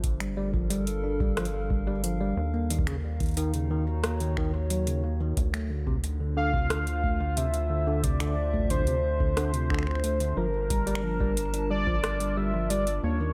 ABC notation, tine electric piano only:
X:1
M:4/4
L:1/16
Q:1/4=90
K:Gdor
V:1 name="Tine electric piano" clef=bass
z G, G, F, G, z D G, F, z G, G, F, G, z B, | _E, _D, z E, E, D, E, z B, E, E, z _G, D, B, E, | z A, D, C, z D, D, C, D, z A, D, C, z D, D, | C, D, z A, D, C, z D, D, C, D, z A, D, F, z |
G, G, F, G, z D G, F, z G, G, z G, z B, _E, |]